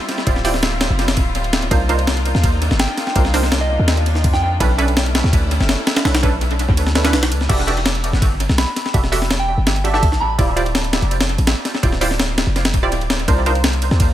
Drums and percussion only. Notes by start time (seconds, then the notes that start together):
0.09 snare, ride
0.18 snare
0.27 kick, ride
0.36 snare
0.45 open hi-hat
0.54 snare
0.63 snare, ride
0.81 snare, ride
0.99 snare, ride
1.08 snare, ride
1.17 kick, ride
1.35 ride
1.44 ride
1.53 snare, ride
1.62 ride
1.71 kick, ride
1.89 ride
1.99 ride
2.07 snare, ride
2.17 ride
2.26 ride
2.35 snare
2.44 kick, ride
2.62 ride
2.71 snare
2.80 snare, ride
2.98 snare, ride
3.07 snare
3.16 kick, ride
3.25 snare
3.34 open hi-hat
3.43 snare
3.52 snare, ride
3.88 snare, ride
3.97 ride
4.06 ride
4.15 snare
4.24 kick, ride
4.33 snare
4.60 kick, ride
4.79 ride
4.88 ride
4.97 snare, ride
5.06 ride
5.15 snare, ride
5.24 snare
5.33 kick, ride
5.51 ride
5.61 snare
5.69 snare, ride
5.87 snare, ride
5.96 snare, ride
6.05 snare, ride
6.15 snare, ride
6.23 kick, ride
6.41 ride
6.51 ride
6.59 ride
6.69 kick
6.77 ride
6.87 snare
6.95 snare, ride
7.05 snare, ride
7.13 snare, ride
7.23 snare, ride
7.32 ride
7.41 snare
7.50 kick, crash, ride
7.68 ride
7.77 ride
7.86 snare, ride
7.95 ride
8.04 ride
8.13 snare
8.22 kick, ride
8.40 ride
8.49 snare
8.58 snare, ride
8.76 snare, ride
8.86 snare
8.94 kick, ride
9.04 snare
9.12 open hi-hat
9.22 snare
9.31 snare, ride
9.67 snare, ride
9.76 ride
9.85 ride
9.94 snare
10.03 kick, ride
10.12 snare
10.39 kick, ride
10.57 ride
10.66 ride
10.75 snare, ride
10.84 ride
10.93 snare, ride
11.02 ride
11.11 ride
11.21 snare, ride
11.29 ride
11.38 ride
11.47 snare, ride
11.65 snare, ride
11.75 snare
11.83 kick, ride
11.93 snare
12.01 open hi-hat
12.11 snare
12.20 snare, ride
12.38 snare, ride
12.56 snare, ride
12.65 snare, ride
12.74 kick, ride
12.92 ride
13.01 ride
13.10 snare, ride
13.19 ride
13.28 kick, ride
13.46 ride
13.55 ride
13.64 snare, ride
13.73 ride
13.82 ride
13.91 snare
14.00 kick, ride